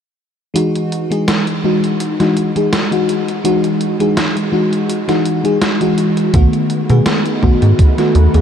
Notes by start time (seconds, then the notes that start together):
0.54 E3 G#3 D#4 F#4, closed hi-hat
0.76 closed hi-hat
0.92 closed hi-hat
1.10 E3 G#3 D#4 G#4, closed hi-hat
1.28 snare, closed hi-hat
1.47 closed hi-hat
1.63 E3 G#3 D#4 F#4
1.84 closed hi-hat
2.00 closed hi-hat
2.19 E3 G#3 D#4 F#4, snare, closed hi-hat
2.37 closed hi-hat
2.55 E3 G#3 D#4 G#4, closed hi-hat
2.73 snare, closed hi-hat
2.91 E3 G#3 D#4 F#4, closed hi-hat
3.09 closed hi-hat
3.28 closed hi-hat
3.44 E3 G#3 D#4 F#4, closed hi-hat
3.64 closed hi-hat
3.81 closed hi-hat
3.99 E3 G#3 D#4 G#4, closed hi-hat
4.17 snare, closed hi-hat
4.37 closed hi-hat
4.52 E3 G#3 D#4 F#4
4.73 closed hi-hat
4.90 closed hi-hat
5.08 E3 G#3 D#4 F#4, snare, closed hi-hat
5.26 closed hi-hat
5.43 E3 G#3 D#4 G#4, closed hi-hat
5.62 snare, closed hi-hat
5.80 E3 G#3 D#4 F#4, closed hi-hat
5.98 closed hi-hat
6.17 closed hi-hat
6.33 B1 D#3 A3 B3 D#4 F#4 B4, kick, closed hi-hat
6.53 closed hi-hat
6.70 closed hi-hat
6.89 B2 D#3 A3 B3 G#4, closed hi-hat
7.06 snare, closed hi-hat
7.25 closed hi-hat
7.42 B1 D#3 A3 B3 F#4, kick
7.62 G#2, closed hi-hat
7.79 kick, closed hi-hat
7.97 D#3 A3 B3 F#4, snare, closed hi-hat
8.15 D#2, closed hi-hat
8.33 D#2 D#3 A3 B3 G#4, closed hi-hat